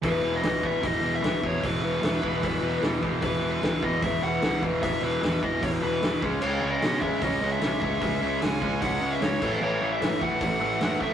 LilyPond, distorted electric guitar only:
\new Staff \with { instrumentName = "Distorted electric guitar" } { \clef bass \time 4/4 \key e \major \tempo 4 = 150 <e, b, e>8 <e, b, e>8 <e, b, e>8 <e, b, e>8 <e, b, e>8 <e, b, e>8 <e, b, e>8 <e, b, e>8 | <e, b, e>8 <e, b, e>8 <e, b, e>8 <e, b, e>8 <e, b, e>8 <e, b, e>8 <e, b, e>8 <e, b, e>8 | <e, b, e>8 <e, b, e>8 <e, b, e>8 <e, b, e>8 <e, b, e>8 <e, b, e>8 <e, b, e>8 <e, b, e>8 | <e, b, e>8 <e, b, e>8 <e, b, e>8 <e, b, e>8 <e, b, e>8 <e, b, e>8 <e, b, e>8 <cis gis cis'>8 |
<cis gis cis'>8 <cis gis cis'>8 <cis gis cis'>8 <cis gis cis'>8 <cis gis cis'>8 <cis gis cis'>8 <cis gis cis'>8 <cis gis cis'>8 | <cis gis cis'>8 <cis gis cis'>8 <cis gis cis'>8 <cis gis cis'>8 <cis gis cis'>8 <cis gis cis'>8 <cis gis cis'>8 <a, e a>8 | <a, e a>8 <a, e a>8 <a, e a>8 <a, e a>8 <a, e a>8 <a, e a>8 <a, e a>8 <a, e a>8 | }